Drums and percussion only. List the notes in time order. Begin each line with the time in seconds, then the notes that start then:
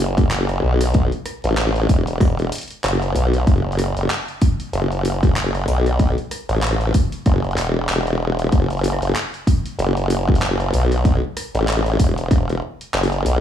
0.18 kick, open hi-hat
0.31 clap, open hi-hat
0.49 cross-stick, open hi-hat
0.81 cross-stick, open hi-hat
0.94 kick, open hi-hat
1.12 open hi-hat
1.26 cross-stick, open hi-hat
1.44 open hi-hat
1.57 clap, open hi-hat
1.76 open hi-hat
1.89 kick, open hi-hat
2.07 open hi-hat
2.21 kick, cross-stick, open hi-hat
2.39 open hi-hat
2.52 open hi-hat
2.55 open hi-hat
2.58 open hi-hat
2.61 open hi-hat
2.63 open hi-hat
2.68 open hi-hat
2.71 open hi-hat
2.84 clap, open hi-hat
3.02 cross-stick, open hi-hat
3.15 open hi-hat
3.33 open hi-hat
3.47 kick, open hi-hat
3.72 open hi-hat
3.79 cross-stick, open hi-hat
3.97 open hi-hat
4.10 clap, open hi-hat
4.28 open hi-hat
4.42 kick, open hi-hat
4.60 open hi-hat
4.73 open hi-hat
4.92 open hi-hat
5.05 open hi-hat
5.23 kick, open hi-hat
5.36 clap, open hi-hat
5.55 cross-stick, open hi-hat
5.68 open hi-hat
5.86 cross-stick, open hi-hat
5.99 kick, open hi-hat
6.18 open hi-hat
6.31 cross-stick, open hi-hat
6.49 open hi-hat
6.62 clap, open hi-hat
6.81 open hi-hat
6.94 kick, open hi-hat
7.12 open hi-hat
7.26 kick, cross-stick, open hi-hat
7.44 open hi-hat
7.51 open hi-hat
7.58 clap, open hi-hat
7.67 open hi-hat
7.89 clap, open hi-hat
8.07 cross-stick, open hi-hat
8.39 open hi-hat
8.52 kick, open hi-hat
8.70 open hi-hat
8.73 open hi-hat
8.77 open hi-hat
8.79 open hi-hat
8.82 open hi-hat
8.84 open hi-hat
8.93 cross-stick
9.02 open hi-hat
9.16 clap, open hi-hat
9.34 open hi-hat
9.47 kick, open hi-hat
9.66 open hi-hat
9.79 open hi-hat
9.97 open hi-hat
10.10 open hi-hat
10.29 kick
10.35 open hi-hat
10.42 clap, open hi-hat
10.60 cross-stick, open hi-hat
10.69 cross-stick
10.74 open hi-hat
10.80 cross-stick
10.92 cross-stick, open hi-hat
11.05 kick, open hi-hat
11.37 cross-stick, open hi-hat
11.55 open hi-hat
11.68 clap, open hi-hat
11.86 open hi-hat
11.99 kick, open hi-hat
12.18 open hi-hat
12.31 kick, cross-stick, open hi-hat
12.49 open hi-hat
12.81 open hi-hat
12.94 clap
13.03 open hi-hat
13.12 cross-stick, open hi-hat
13.26 open hi-hat